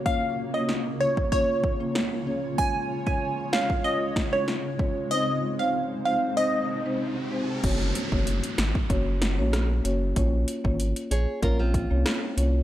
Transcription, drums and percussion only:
0.06 kick
0.69 snare
1.17 kick
1.32 kick
1.64 kick
1.95 snare
2.58 kick
3.07 kick
3.53 snare
3.70 kick
4.16 kick, snare
4.48 snare
4.79 kick
7.64 kick, closed hi-hat, crash
7.95 closed hi-hat
8.12 kick
8.27 closed hi-hat
8.44 closed hi-hat
8.58 snare, closed hi-hat
8.75 kick
8.90 kick, closed hi-hat
9.22 snare, closed hi-hat
9.53 cross-stick, snare, closed hi-hat
9.85 closed hi-hat
10.16 kick, closed hi-hat
10.48 closed hi-hat
10.65 kick
10.80 closed hi-hat
10.96 closed hi-hat
11.11 closed hi-hat
11.43 kick, closed hi-hat
11.74 kick, closed hi-hat
12.06 cross-stick, snare, closed hi-hat
12.38 closed hi-hat

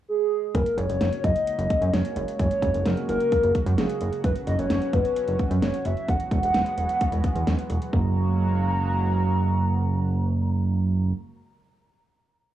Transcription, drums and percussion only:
0.55 kick, closed hi-hat
0.66 closed hi-hat
0.78 closed hi-hat
0.90 closed hi-hat
1.01 snare, closed hi-hat
1.13 closed hi-hat
1.24 kick, closed hi-hat
1.36 closed hi-hat
1.47 closed hi-hat
1.59 closed hi-hat
1.70 kick, closed hi-hat
1.82 closed hi-hat
1.94 snare, closed hi-hat
2.05 closed hi-hat
2.16 closed hi-hat
2.28 closed hi-hat
2.39 kick, closed hi-hat
2.51 closed hi-hat
2.62 kick, closed hi-hat
2.74 closed hi-hat
2.85 snare, closed hi-hat
2.97 closed hi-hat
3.09 closed hi-hat
3.20 closed hi-hat
3.32 kick, closed hi-hat
3.43 closed hi-hat
3.55 kick, closed hi-hat
3.66 closed hi-hat
3.78 snare, closed hi-hat
3.90 closed hi-hat
4.01 closed hi-hat
4.13 closed hi-hat
4.24 kick, closed hi-hat
4.35 closed hi-hat
4.47 closed hi-hat
4.59 closed hi-hat
4.70 snare, closed hi-hat
4.82 closed hi-hat
4.93 kick, closed hi-hat
5.05 closed hi-hat
5.16 closed hi-hat
5.28 closed hi-hat
5.39 kick, closed hi-hat
5.51 closed hi-hat
5.62 snare, closed hi-hat
5.74 closed hi-hat
5.85 closed hi-hat
5.97 closed hi-hat
6.08 kick, closed hi-hat
6.20 closed hi-hat
6.31 kick, closed hi-hat
6.43 closed hi-hat
6.54 snare, closed hi-hat
6.66 closed hi-hat
6.78 closed hi-hat
6.89 closed hi-hat
7.01 kick, closed hi-hat
7.12 closed hi-hat
7.24 kick, closed hi-hat
7.36 closed hi-hat
7.47 snare, closed hi-hat
7.59 closed hi-hat
7.70 closed hi-hat
7.82 closed hi-hat
7.93 kick

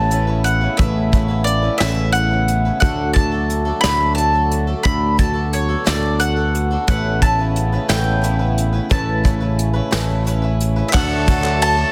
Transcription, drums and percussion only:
0.11 closed hi-hat
0.45 closed hi-hat
0.79 kick, closed hi-hat
1.13 kick, closed hi-hat
1.47 closed hi-hat
1.80 snare, closed hi-hat
2.15 closed hi-hat
2.48 closed hi-hat
2.82 kick, closed hi-hat
3.16 kick, closed hi-hat
3.50 closed hi-hat
3.84 snare, closed hi-hat
4.18 closed hi-hat
4.51 closed hi-hat
4.85 kick, closed hi-hat
5.19 kick, closed hi-hat
5.53 closed hi-hat
5.87 snare, closed hi-hat
6.21 closed hi-hat
6.55 closed hi-hat
6.88 kick, closed hi-hat
7.22 kick, closed hi-hat
7.56 closed hi-hat
7.89 snare, closed hi-hat
8.24 closed hi-hat
8.58 closed hi-hat
8.91 kick, closed hi-hat
9.25 kick, closed hi-hat
9.59 closed hi-hat
9.92 snare, closed hi-hat
10.27 closed hi-hat
10.60 closed hi-hat
10.93 kick, clap, ride, tambourine
11.28 kick, clap, ride, tambourine
11.44 clap
11.62 ride
11.78 clap

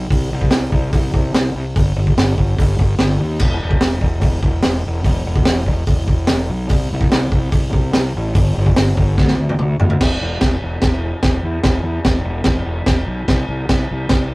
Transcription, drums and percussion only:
0.10 kick, open hi-hat
0.41 kick
0.51 snare, open hi-hat
0.72 kick
0.93 kick, open hi-hat
1.14 kick
1.34 snare, open hi-hat
1.76 kick, open hi-hat
2.07 kick
2.18 snare, open hi-hat
2.38 kick
2.59 kick, open hi-hat
2.79 kick
2.99 snare, open hi-hat
3.39 kick, crash
3.71 kick
3.81 snare, open hi-hat
4.01 kick
4.21 kick, open hi-hat
4.43 kick
4.62 snare, open hi-hat
5.04 kick, open hi-hat
5.36 kick
5.45 snare, open hi-hat
5.66 kick
5.86 kick, open hi-hat
6.08 kick
6.27 snare, open hi-hat
6.69 kick, open hi-hat
7.01 kick
7.12 snare, open hi-hat
7.32 kick
7.52 kick, open hi-hat
7.73 kick
7.93 snare, open hi-hat
8.35 kick, open hi-hat
8.66 kick
8.76 snare, open hi-hat
8.97 kick
9.18 kick, snare
9.28 snare
9.49 high tom
9.59 mid tom
9.80 floor tom
9.90 floor tom
10.01 kick, snare, crash
10.41 kick, snare, crash
10.82 kick, snare, crash
11.23 kick, snare, crash
11.63 kick, snare, crash
12.05 kick, snare, crash
12.44 kick, snare, crash
12.86 kick, snare, crash
13.28 kick, snare, crash
13.69 kick, snare, crash
14.09 kick, snare, crash

